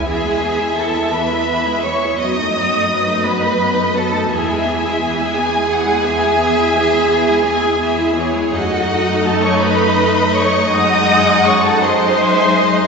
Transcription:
X:1
M:12/8
L:1/16
Q:3/8=56
K:E
V:1 name="Violin section"
g4 a2 b4 c'2 d'6 b4 a2 | g24 | f4 a c' b4 c'2 d'4 c' a ^b6 |]
V:2 name="Violin section"
e12 d2 c2 B2 d6 | e6 g2 f2 e8 g2 e2 c2 | d6 d6 f6 d2 e2 d2 |]
V:3 name="Cello section"
G4 A2 B4 c2 d6 B4 A2 | G24 | F4 A c B4 c2 d4 c A ^B6 |]
V:4 name="Viola section"
[E,B,] [G,E] [E,B,] [G,E] [E,B,] [G,E] [E,B,] [G,E] [E,B,] [G,E] [E,B,] [G,E] [F,B,] [A,D] [F,B,] [A,D] [F,B,] [A,D] [F,B,] [A,D] [F,B,] [A,D] [F,B,] [A,D] | [E,B,] [G,E] [E,B,] [G,E] [E,B,] [G,E] [E,B,] [G,E] [E,B,] [G,E] [E,B,] [G,E] [E,B,] [G,E] [E,B,] [G,E] [E,B,] [G,E] [E,B,] [G,E] [E,B,] [G,E] [E,B,] [G,E] | [A,D]12 [G,D]6 [G,D]6 |]
V:5 name="Double bass section" clef=bass
E,,12 F,,12 | E,,24 | F,,12 F,,12 |]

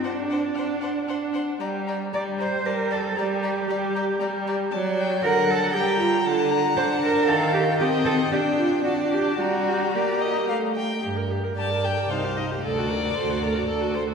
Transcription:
X:1
M:3/4
L:1/16
Q:1/4=115
K:Gm
V:1 name="Violin"
^f2 f2 f2 f2 f2 f2 | b2 b2 b2 b2 a2 a2 | b2 b2 b2 b2 b2 b2 | a2 g2 ^f4 b4 |
a2 b2 a4 g4 | g8 a4 | b8- b2 z2 | z4 a2 g2 f2 e2 |
d8- d2 z2 |]
V:2 name="Violin"
c2 c2 c2 c2 c2 c2 | d2 d2 d2 d2 d2 d2 | d2 d2 d2 d2 d2 d2 | d4 ^f4 g4 |
^f8 =f4 | e4 d4 d4 | d4 d2 e2 f2 g2 | z4 d4 c4 |
A2 B2 c2 B2 A2 c2 |]
V:3 name="Cello"
D8- D2 z2 | z4 d2 c2 B2 A2 | G8- G2 z2 | z4 B2 A2 G2 F2 |
z4 c2 B2 A2 G2 | G2 A2 G2 F2 ^F2 G2 | ^F4 G4 z4 | G,,4 G,,4 C,,4 |
D,,4 D,,4 D,,4 |]
V:4 name="Viola"
D4 D4 D4 | G,4 G,4 G,4 | G,4 G,4 G,4 | ^F,4 D,4 G,4 |
D,4 D4 E,4 | C4 D4 D4 | G,4 B,4 A,4 | G B G B G B G B E G E G |
A ^F A F A F A F A F A F |]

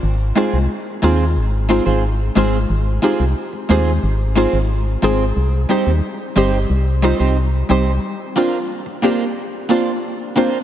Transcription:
X:1
M:4/4
L:1/16
Q:1/4=90
K:Ablyd
V:1 name="Nylon-string guitar"
z2 [CFAc] z3 [CFAc] z3 [CFAc] [CFAc] z2 [CFAc] z | z2 [CFAc] z3 [CFAc] z3 [CFAc] z3 [CFAc] z | z2 [CEGc] z3 [CEGc] z3 [CEGc] [CEGc] z2 [CEGc] z | z2 [B,DFc] z3 [B,DFc] z3 [B,DFc] z3 [B,DFc] z |]
V:2 name="Synth pluck"
z2 [A,CEF]2 z2 [A,CEF]2 z2 [A,CEF]2 z2 [A,CEF]2 | z2 [A,CEG]2 z2 [A,CEG]2 z2 [A,CEF]2 z2 [A,CEA]2 | z2 [G,CEG]2 z2 [G,CEG]2 z2 [G,CEF]2 z2 [G,CEG]2 | z2 [B,CDF]2 z2 [B,CDG]2 z2 [B,CDF]2 z2 [B,CDF]2 |]
V:3 name="FM bass" clef=bass
A,,,2 z C,, z2 E,,2 A,,,3 A,,,3 A,,,2 | A,,,2 z C,, z2 E,,2 A,,,3 A,,,3 A,,,2 | C,,2 z E,, z2 G,,,2 C,,3 C,,3 C,,2 | z16 |]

